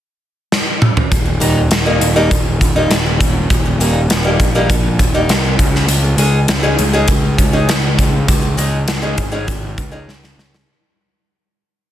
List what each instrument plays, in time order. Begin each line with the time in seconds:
0.52 snare
0.82 mid tom
0.97 floor tom
1.12 picked electric bass D#1, kick, closed hi-hat
1.26 muted steel-string acoustic guitar stroke
1.40 picked electric bass D#1, steel-string acoustic guitar D#3 G3 A#3 D#4, closed hi-hat
1.71 picked electric bass D#1, muted steel-string acoustic guitar stroke, snare, closed hi-hat
1.86 steel-string acoustic guitar D#3 G3 A#3 D#4
2.00 picked electric bass D#1, closed hi-hat
2.16 steel-string acoustic guitar D#3 G3 A#3 D#4
2.31 picked electric bass D#1, kick, closed hi-hat
2.61 picked electric bass D#1, kick, closed hi-hat
2.76 steel-string acoustic guitar D#3 G3 A#3 D#4
2.89 picked electric bass D#1, snare, closed hi-hat
3.06 muted steel-string acoustic guitar stroke
3.21 kick, closed hi-hat
3.50 picked electric bass D#1, kick, closed hi-hat
3.65 muted steel-string acoustic guitar stroke
3.78 picked electric bass D#1, steel-string acoustic guitar D#3 G3 A#3 D#4, closed hi-hat
4.09 picked electric bass D#1, snare, closed hi-hat
4.24 steel-string acoustic guitar D#3 G3 A#3 D#4
4.40 picked electric bass A#1, kick, closed hi-hat
4.55 steel-string acoustic guitar D#3 G3 A#3 D#4
4.70 picked electric bass A#1, muted steel-string acoustic guitar stroke, kick, closed hi-hat
4.99 picked electric bass D#1, kick, closed hi-hat
5.14 steel-string acoustic guitar D#3 G3 A#3 D#4
5.29 picked electric bass C2, snare, closed hi-hat
5.44 muted steel-string acoustic guitar stroke
5.59 picked electric bass C#2, kick, closed hi-hat
5.75 snare
5.88 picked electric bass C#2, closed hi-hat
6.04 muted steel-string acoustic guitar stroke
6.17 picked electric bass C#2, steel-string acoustic guitar G#3 C#4 D#4 G#4, closed hi-hat
6.48 picked electric bass C#2, muted steel-string acoustic guitar stroke, snare, closed hi-hat
6.63 steel-string acoustic guitar G#3 C#4 D#4 G#4
6.79 picked electric bass C#2, closed hi-hat
6.93 steel-string acoustic guitar G#3 C#4 D#4 G#4
7.07 picked electric bass C#2, muted steel-string acoustic guitar stroke, kick, closed hi-hat
7.38 picked electric bass C#2, kick, closed hi-hat
7.53 steel-string acoustic guitar G#3 C#4 D#4 G#4
7.68 picked electric bass C#2, snare, closed hi-hat
7.82 muted steel-string acoustic guitar stroke
7.99 kick, closed hi-hat
8.28 picked electric bass C#2, kick, closed hi-hat
8.42 muted steel-string acoustic guitar stroke
8.57 picked electric bass C#2, steel-string acoustic guitar G#3 C#4 D#4 G#4, closed hi-hat
8.87 picked electric bass C#2, muted steel-string acoustic guitar stroke, snare, closed hi-hat
9.02 steel-string acoustic guitar G#3 C#4 D#4 G#4
9.18 picked electric bass G#1, kick, closed hi-hat
9.32 steel-string acoustic guitar G#3 C#4 D#4 G#4
9.47 picked electric bass G#1, muted steel-string acoustic guitar stroke, kick, closed hi-hat
9.78 picked electric bass C#2, kick, closed hi-hat
9.91 steel-string acoustic guitar G#3 C#4 D#4 G#4
10.08 picked electric bass C#2, snare
10.22 muted steel-string acoustic guitar stroke, snare
10.37 picked electric bass C#2, snare
10.54 snare